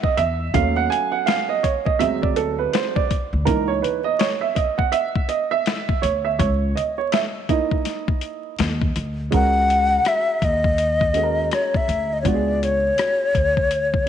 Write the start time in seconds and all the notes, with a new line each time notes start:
0.03 D#5, kick
0.17 E2 E5, closed hi-hat
0.54 D#2 F#3 A3 C#4 F5, kick, closed hi-hat
0.76 F#5
0.90 G#5, closed hi-hat
1.12 F#5
1.26 F5, snare, closed hi-hat
1.49 D#5
1.63 C#5, kick, closed hi-hat
1.85 D#5, kick
1.99 D2 F#3 G#3 C4 E5, closed hi-hat
2.22 D5, kick
2.36 A4, closed hi-hat
2.59 B4
2.73 C5, snare, closed hi-hat
2.95 D5, kick
3.11 kick, closed hi-hat
3.33 D2
3.45 C#2 E3 A#3 D#4 A#4, kick, closed hi-hat
3.68 C#5
3.82 B4, closed hi-hat
4.04 D#5
4.19 C#5, snare, closed hi-hat
4.41 E5
4.55 D#5, kick, closed hi-hat
4.78 F#5, kick
4.92 E5, closed hi-hat
5.16 kick
5.29 D#5, closed hi-hat
5.51 E5
5.66 snare, closed hi-hat
5.89 kick
6.02 D2 C#5, closed hi-hat
6.25 E5
6.39 C#2 C#5, kick, closed hi-hat
6.75 D#5, closed hi-hat
6.98 C#5
7.12 E5, snare, closed hi-hat
7.49 A#3 D#4 E4 D#5, kick, closed hi-hat
7.71 kick
7.85 snare, closed hi-hat
8.08 kick
8.21 closed hi-hat
8.59 D#2, snare, closed hi-hat
8.82 kick
8.96 D2, closed hi-hat
9.31 C#2 G#3 C#4 F#4 A#4, kick, closed hi-hat
9.35 F#5
9.70 closed hi-hat
10.05 E5, cross-stick, closed hi-hat
10.42 D#2 D#5, kick, closed hi-hat
10.64 kick
10.78 closed hi-hat
11.01 kick
11.13 G#3 C#4 F#4 A4, closed hi-hat
11.23 A#4
11.51 C#5, cross-stick, closed hi-hat
11.74 E5, kick
11.88 D2, closed hi-hat
12.13 D#5
12.21 C#2 B3 D4 F4 C#5, kick, closed hi-hat
12.27 F#4 D5
12.33 G#4
12.63 C#5, closed hi-hat
12.98 cross-stick, closed hi-hat
13.35 D2, kick, closed hi-hat
13.57 kick
13.71 closed hi-hat
13.94 kick